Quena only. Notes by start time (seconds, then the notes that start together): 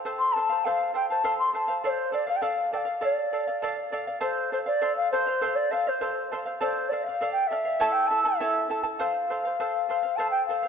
0.18 C6
0.33 A5
0.64 F5
0.95 G5
1.09 A5
1.38 C6
1.54 A5
1.85 C#5
1.89 C5
2.13 D5
2.28 F5
2.36 G5
2.41 F5
2.74 F5 G5
3.04 D5
4.22 C5
4.53 C5
4.66 D5
4.96 F5
5.12 C5
5.55 D5
5.71 F5
5.88 C5
6.60 C5
6.89 D5
7.04 F5
7.32 G5
7.47 E5
7.92 G5
8.07 A5
8.23 E5
8.98 F5
10.16 A5
10.30 G5
10.45 F5